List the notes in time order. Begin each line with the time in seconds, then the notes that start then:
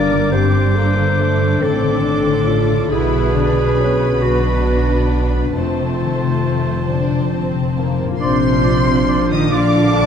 Already playing: G1 G2 D3 G3 A#3 D4 A#4 D5 D6
0.12 D3
0.32 G2 C4 D4 G4 C5
0.77 A#3 A4
0.98 D3
1.18 A3 A4
1.40 D3
1.61 A1 A2 D#3 C4 D4 A4 D6
1.82 D3
2.04 C4 D4
2.25 D3
2.45 D4 F4
2.69 D3
2.89 B1 B2 E4 G#4 B4 B5
3.13 F#3
3.33 D3 D4
3.55 F#3
3.77 B3 C#4
3.99 F#3
4.22 G#3 D4 F#4
4.44 F#3
4.66 B3
4.88 F#3
5.11 D4
5.33 F#3
5.55 F1 F2 A3 C4 F4 C5 A5
5.78 C3
6.01 D#3
6.23 C3
6.44 C4
6.67 C3
6.89 D3 D4
7.11 C3
7.33 C4
7.55 C3
7.78 A#3 D#4
7.99 A#2 C3
8.08 D4
8.12 F4
8.17 F3 F4 A#4 C6
8.21 A#1 C3 D4 F4 C5 D5
8.64 F4 D5
9.08 F4 D5
9.30 D#3 D#5 D#6
9.51 D3 F4 D5 F5 D6
9.95 F4 D5 A5